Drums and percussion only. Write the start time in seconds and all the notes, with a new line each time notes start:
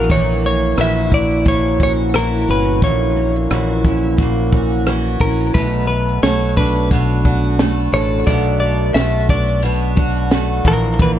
0.10 kick, shaker
0.44 shaker
0.62 shaker
0.77 cross-stick, shaker
1.12 kick, shaker
1.30 shaker
1.45 kick, shaker
1.80 kick, shaker
2.14 cross-stick, shaker
2.48 shaker
2.82 kick, shaker
3.17 shaker
3.36 shaker
3.51 cross-stick, shaker
3.85 kick, shaker
4.18 kick, shaker
4.53 kick, cross-stick, shaker
4.71 shaker
4.86 cross-stick, shaker
5.20 kick, shaker
5.40 shaker
5.55 kick, shaker
5.89 shaker
6.09 shaker
6.23 snare, shaker
6.57 kick, shaker
6.76 shaker
6.90 kick, shaker
7.25 kick, shaker
7.44 shaker
7.59 snare, shaker
7.94 shaker
8.27 kick, shaker
8.62 shaker
8.95 snare, shaker
9.29 kick, shaker
9.48 shaker
9.62 shaker
9.97 kick, shaker
10.16 shaker
10.31 snare, shaker
10.65 kick, shaker
10.99 kick, shaker